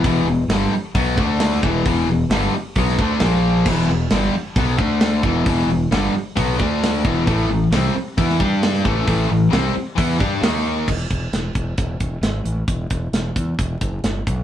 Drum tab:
CC |----------------|----------------|x---------------|----------------|
HH |o---o---o---o---|o---o---o---o---|----o---o---o---|o---o---o---o---|
SD |----o-------oo--|----o----o--o---|----o-------o---|----o-------o---|
BD |o-------o-o---o-|o-------o-o-----|o-------o-o---o-|o-------o-o---o-|

CC |----------------|----------------|x---------------|----------------|
HH |o---o---o---o---|o---o---o---o---|--x-x-x-x-x-x-x-|x-x-x-x-x-x-x-x-|
SD |----o----o--oo--|----o-------o---|----o-------o---|----o-------o---|
BD |o-------o-o---o-|o-------o-o-----|o-o---o-o-o-----|o-o---o-o-o---o-|